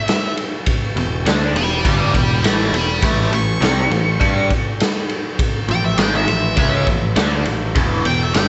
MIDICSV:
0, 0, Header, 1, 5, 480
1, 0, Start_track
1, 0, Tempo, 590551
1, 543, Time_signature, 4, 2, 24, 8
1, 6893, End_track
2, 0, Start_track
2, 0, Title_t, "Lead electric guitar"
2, 0, Program_c, 0, 29
2, 0, Note_on_c, 0, 76, 94
2, 283, Note_off_c, 0, 76, 0
2, 1269, Note_on_c, 0, 74, 74
2, 1275, Note_on_c, 0, 79, 80
2, 1498, Note_off_c, 0, 74, 0
2, 1500, Note_off_c, 0, 79, 0
2, 1508, Note_on_c, 0, 74, 72
2, 1511, Note_on_c, 0, 79, 87
2, 1729, Note_off_c, 0, 74, 0
2, 1740, Note_off_c, 0, 79, 0
2, 1747, Note_on_c, 0, 74, 62
2, 1752, Note_on_c, 0, 79, 75
2, 1968, Note_off_c, 0, 74, 0
2, 1980, Note_off_c, 0, 79, 0
2, 1990, Note_on_c, 0, 79, 55
2, 1996, Note_on_c, 0, 83, 63
2, 2210, Note_off_c, 0, 79, 0
2, 2221, Note_off_c, 0, 83, 0
2, 2232, Note_on_c, 0, 79, 65
2, 2239, Note_on_c, 0, 83, 82
2, 2451, Note_off_c, 0, 79, 0
2, 2464, Note_off_c, 0, 83, 0
2, 2475, Note_on_c, 0, 79, 62
2, 2479, Note_on_c, 0, 83, 63
2, 2693, Note_off_c, 0, 79, 0
2, 2702, Note_off_c, 0, 83, 0
2, 2716, Note_on_c, 0, 85, 90
2, 3641, Note_off_c, 0, 85, 0
2, 4641, Note_on_c, 0, 79, 95
2, 4749, Note_off_c, 0, 79, 0
2, 4755, Note_on_c, 0, 76, 98
2, 4863, Note_off_c, 0, 76, 0
2, 4866, Note_on_c, 0, 79, 99
2, 4982, Note_off_c, 0, 79, 0
2, 5001, Note_on_c, 0, 76, 75
2, 5106, Note_off_c, 0, 76, 0
2, 5116, Note_on_c, 0, 76, 95
2, 5577, Note_off_c, 0, 76, 0
2, 6553, Note_on_c, 0, 79, 99
2, 6690, Note_off_c, 0, 79, 0
2, 6690, Note_on_c, 0, 76, 85
2, 6782, Note_off_c, 0, 76, 0
2, 6785, Note_on_c, 0, 79, 96
2, 6893, Note_off_c, 0, 79, 0
2, 6893, End_track
3, 0, Start_track
3, 0, Title_t, "Overdriven electric guitar"
3, 0, Program_c, 1, 29
3, 790, Note_on_c, 1, 40, 67
3, 799, Note_on_c, 1, 47, 65
3, 978, Note_off_c, 1, 40, 0
3, 983, Note_off_c, 1, 47, 0
3, 1026, Note_on_c, 1, 50, 78
3, 1028, Note_on_c, 1, 57, 80
3, 1031, Note_on_c, 1, 62, 91
3, 1257, Note_off_c, 1, 50, 0
3, 1258, Note_off_c, 1, 57, 0
3, 1259, Note_off_c, 1, 62, 0
3, 1267, Note_on_c, 1, 40, 73
3, 1269, Note_on_c, 1, 47, 74
3, 1457, Note_off_c, 1, 40, 0
3, 1458, Note_off_c, 1, 47, 0
3, 1503, Note_on_c, 1, 43, 84
3, 1510, Note_on_c, 1, 50, 84
3, 1514, Note_on_c, 1, 55, 91
3, 1736, Note_off_c, 1, 43, 0
3, 1739, Note_off_c, 1, 50, 0
3, 1741, Note_off_c, 1, 55, 0
3, 1751, Note_on_c, 1, 40, 61
3, 1755, Note_on_c, 1, 47, 68
3, 1938, Note_off_c, 1, 40, 0
3, 1941, Note_off_c, 1, 47, 0
3, 1980, Note_on_c, 1, 45, 92
3, 1988, Note_on_c, 1, 52, 103
3, 1992, Note_on_c, 1, 57, 101
3, 2214, Note_off_c, 1, 45, 0
3, 2218, Note_off_c, 1, 52, 0
3, 2218, Note_on_c, 1, 40, 62
3, 2220, Note_off_c, 1, 57, 0
3, 2222, Note_on_c, 1, 47, 74
3, 2412, Note_off_c, 1, 40, 0
3, 2414, Note_off_c, 1, 47, 0
3, 2456, Note_on_c, 1, 45, 95
3, 2464, Note_on_c, 1, 52, 99
3, 2468, Note_on_c, 1, 57, 113
3, 2688, Note_off_c, 1, 45, 0
3, 2693, Note_off_c, 1, 52, 0
3, 2698, Note_off_c, 1, 57, 0
3, 2698, Note_on_c, 1, 45, 57
3, 2703, Note_on_c, 1, 52, 66
3, 2892, Note_off_c, 1, 45, 0
3, 2895, Note_off_c, 1, 52, 0
3, 2934, Note_on_c, 1, 48, 71
3, 2941, Note_on_c, 1, 55, 76
3, 2941, Note_on_c, 1, 60, 73
3, 3171, Note_off_c, 1, 48, 0
3, 3174, Note_off_c, 1, 55, 0
3, 3175, Note_off_c, 1, 60, 0
3, 3180, Note_on_c, 1, 45, 74
3, 3184, Note_on_c, 1, 52, 66
3, 3373, Note_off_c, 1, 45, 0
3, 3376, Note_off_c, 1, 52, 0
3, 3414, Note_on_c, 1, 55, 94
3, 3421, Note_on_c, 1, 62, 92
3, 3422, Note_on_c, 1, 67, 93
3, 3652, Note_off_c, 1, 55, 0
3, 3655, Note_off_c, 1, 62, 0
3, 3656, Note_off_c, 1, 67, 0
3, 4622, Note_on_c, 1, 46, 59
3, 4626, Note_on_c, 1, 53, 68
3, 4815, Note_off_c, 1, 46, 0
3, 4817, Note_off_c, 1, 53, 0
3, 4863, Note_on_c, 1, 44, 83
3, 4866, Note_on_c, 1, 51, 83
3, 4871, Note_on_c, 1, 56, 85
3, 5097, Note_off_c, 1, 44, 0
3, 5098, Note_off_c, 1, 51, 0
3, 5101, Note_off_c, 1, 56, 0
3, 5103, Note_on_c, 1, 46, 59
3, 5109, Note_on_c, 1, 53, 72
3, 5296, Note_off_c, 1, 46, 0
3, 5299, Note_off_c, 1, 53, 0
3, 5344, Note_on_c, 1, 49, 81
3, 5351, Note_on_c, 1, 56, 92
3, 5351, Note_on_c, 1, 61, 101
3, 5577, Note_off_c, 1, 49, 0
3, 5581, Note_off_c, 1, 56, 0
3, 5581, Note_off_c, 1, 61, 0
3, 5589, Note_on_c, 1, 46, 59
3, 5594, Note_on_c, 1, 53, 68
3, 5779, Note_off_c, 1, 46, 0
3, 5782, Note_off_c, 1, 53, 0
3, 5818, Note_on_c, 1, 50, 88
3, 5822, Note_on_c, 1, 57, 83
3, 5828, Note_on_c, 1, 62, 88
3, 6052, Note_off_c, 1, 50, 0
3, 6055, Note_on_c, 1, 46, 59
3, 6057, Note_off_c, 1, 57, 0
3, 6060, Note_off_c, 1, 62, 0
3, 6061, Note_on_c, 1, 53, 75
3, 6253, Note_off_c, 1, 46, 0
3, 6256, Note_off_c, 1, 53, 0
3, 6302, Note_on_c, 1, 40, 102
3, 6308, Note_on_c, 1, 47, 106
3, 6310, Note_on_c, 1, 52, 106
3, 6534, Note_off_c, 1, 40, 0
3, 6535, Note_off_c, 1, 47, 0
3, 6541, Note_off_c, 1, 52, 0
3, 6544, Note_on_c, 1, 40, 52
3, 6545, Note_on_c, 1, 47, 68
3, 6737, Note_off_c, 1, 40, 0
3, 6738, Note_off_c, 1, 47, 0
3, 6779, Note_on_c, 1, 50, 75
3, 6780, Note_on_c, 1, 43, 80
3, 6788, Note_on_c, 1, 55, 86
3, 6893, Note_off_c, 1, 43, 0
3, 6893, Note_off_c, 1, 50, 0
3, 6893, Note_off_c, 1, 55, 0
3, 6893, End_track
4, 0, Start_track
4, 0, Title_t, "Picked electric bass"
4, 0, Program_c, 2, 34
4, 781, Note_on_c, 2, 28, 77
4, 1005, Note_off_c, 2, 28, 0
4, 1020, Note_on_c, 2, 38, 94
4, 1244, Note_off_c, 2, 38, 0
4, 1254, Note_on_c, 2, 28, 74
4, 1481, Note_off_c, 2, 28, 0
4, 1503, Note_on_c, 2, 31, 80
4, 1726, Note_off_c, 2, 31, 0
4, 1740, Note_on_c, 2, 28, 79
4, 1964, Note_off_c, 2, 28, 0
4, 1969, Note_on_c, 2, 33, 85
4, 2198, Note_off_c, 2, 33, 0
4, 2212, Note_on_c, 2, 28, 69
4, 2440, Note_off_c, 2, 28, 0
4, 2459, Note_on_c, 2, 33, 79
4, 2684, Note_off_c, 2, 33, 0
4, 2690, Note_on_c, 2, 33, 82
4, 2919, Note_off_c, 2, 33, 0
4, 2930, Note_on_c, 2, 36, 102
4, 3159, Note_off_c, 2, 36, 0
4, 3173, Note_on_c, 2, 33, 77
4, 3401, Note_off_c, 2, 33, 0
4, 3419, Note_on_c, 2, 43, 80
4, 3644, Note_off_c, 2, 43, 0
4, 4620, Note_on_c, 2, 33, 77
4, 4845, Note_off_c, 2, 33, 0
4, 4861, Note_on_c, 2, 32, 100
4, 5086, Note_off_c, 2, 32, 0
4, 5105, Note_on_c, 2, 33, 76
4, 5328, Note_off_c, 2, 33, 0
4, 5342, Note_on_c, 2, 37, 82
4, 5567, Note_off_c, 2, 37, 0
4, 5584, Note_on_c, 2, 33, 70
4, 5808, Note_off_c, 2, 33, 0
4, 5826, Note_on_c, 2, 38, 100
4, 6049, Note_off_c, 2, 38, 0
4, 6064, Note_on_c, 2, 33, 68
4, 6288, Note_off_c, 2, 33, 0
4, 6305, Note_on_c, 2, 28, 85
4, 6529, Note_off_c, 2, 28, 0
4, 6549, Note_on_c, 2, 28, 72
4, 6771, Note_off_c, 2, 28, 0
4, 6784, Note_on_c, 2, 31, 103
4, 6893, Note_off_c, 2, 31, 0
4, 6893, End_track
5, 0, Start_track
5, 0, Title_t, "Drums"
5, 64, Note_on_c, 9, 51, 73
5, 75, Note_on_c, 9, 38, 108
5, 145, Note_off_c, 9, 51, 0
5, 156, Note_off_c, 9, 38, 0
5, 304, Note_on_c, 9, 51, 63
5, 385, Note_off_c, 9, 51, 0
5, 538, Note_on_c, 9, 51, 90
5, 544, Note_on_c, 9, 36, 106
5, 620, Note_off_c, 9, 51, 0
5, 625, Note_off_c, 9, 36, 0
5, 786, Note_on_c, 9, 51, 61
5, 867, Note_off_c, 9, 51, 0
5, 1026, Note_on_c, 9, 51, 92
5, 1037, Note_on_c, 9, 38, 104
5, 1108, Note_off_c, 9, 51, 0
5, 1118, Note_off_c, 9, 38, 0
5, 1267, Note_on_c, 9, 51, 64
5, 1348, Note_off_c, 9, 51, 0
5, 1503, Note_on_c, 9, 36, 107
5, 1506, Note_on_c, 9, 51, 89
5, 1584, Note_off_c, 9, 36, 0
5, 1587, Note_off_c, 9, 51, 0
5, 1742, Note_on_c, 9, 36, 76
5, 1744, Note_on_c, 9, 51, 69
5, 1823, Note_off_c, 9, 36, 0
5, 1825, Note_off_c, 9, 51, 0
5, 1985, Note_on_c, 9, 51, 89
5, 1995, Note_on_c, 9, 38, 98
5, 2066, Note_off_c, 9, 51, 0
5, 2077, Note_off_c, 9, 38, 0
5, 2226, Note_on_c, 9, 51, 65
5, 2307, Note_off_c, 9, 51, 0
5, 2458, Note_on_c, 9, 51, 83
5, 2459, Note_on_c, 9, 36, 103
5, 2539, Note_off_c, 9, 51, 0
5, 2540, Note_off_c, 9, 36, 0
5, 2704, Note_on_c, 9, 51, 60
5, 2785, Note_off_c, 9, 51, 0
5, 2941, Note_on_c, 9, 51, 86
5, 2951, Note_on_c, 9, 38, 93
5, 3022, Note_off_c, 9, 51, 0
5, 3033, Note_off_c, 9, 38, 0
5, 3181, Note_on_c, 9, 51, 59
5, 3262, Note_off_c, 9, 51, 0
5, 3420, Note_on_c, 9, 36, 100
5, 3421, Note_on_c, 9, 51, 78
5, 3502, Note_off_c, 9, 36, 0
5, 3503, Note_off_c, 9, 51, 0
5, 3661, Note_on_c, 9, 36, 74
5, 3661, Note_on_c, 9, 51, 63
5, 3742, Note_off_c, 9, 51, 0
5, 3743, Note_off_c, 9, 36, 0
5, 3904, Note_on_c, 9, 51, 85
5, 3914, Note_on_c, 9, 38, 98
5, 3985, Note_off_c, 9, 51, 0
5, 3995, Note_off_c, 9, 38, 0
5, 4140, Note_on_c, 9, 51, 59
5, 4221, Note_off_c, 9, 51, 0
5, 4382, Note_on_c, 9, 36, 105
5, 4383, Note_on_c, 9, 51, 82
5, 4463, Note_off_c, 9, 36, 0
5, 4464, Note_off_c, 9, 51, 0
5, 4620, Note_on_c, 9, 51, 56
5, 4701, Note_off_c, 9, 51, 0
5, 4858, Note_on_c, 9, 51, 89
5, 4868, Note_on_c, 9, 38, 111
5, 4939, Note_off_c, 9, 51, 0
5, 4950, Note_off_c, 9, 38, 0
5, 5101, Note_on_c, 9, 51, 68
5, 5183, Note_off_c, 9, 51, 0
5, 5337, Note_on_c, 9, 51, 88
5, 5344, Note_on_c, 9, 36, 100
5, 5418, Note_off_c, 9, 51, 0
5, 5425, Note_off_c, 9, 36, 0
5, 5581, Note_on_c, 9, 51, 62
5, 5584, Note_on_c, 9, 36, 78
5, 5663, Note_off_c, 9, 51, 0
5, 5665, Note_off_c, 9, 36, 0
5, 5820, Note_on_c, 9, 51, 97
5, 5830, Note_on_c, 9, 38, 100
5, 5901, Note_off_c, 9, 51, 0
5, 5912, Note_off_c, 9, 38, 0
5, 6059, Note_on_c, 9, 51, 65
5, 6140, Note_off_c, 9, 51, 0
5, 6302, Note_on_c, 9, 51, 85
5, 6305, Note_on_c, 9, 36, 105
5, 6383, Note_off_c, 9, 51, 0
5, 6386, Note_off_c, 9, 36, 0
5, 6544, Note_on_c, 9, 51, 69
5, 6625, Note_off_c, 9, 51, 0
5, 6781, Note_on_c, 9, 51, 97
5, 6791, Note_on_c, 9, 38, 100
5, 6862, Note_off_c, 9, 51, 0
5, 6873, Note_off_c, 9, 38, 0
5, 6893, End_track
0, 0, End_of_file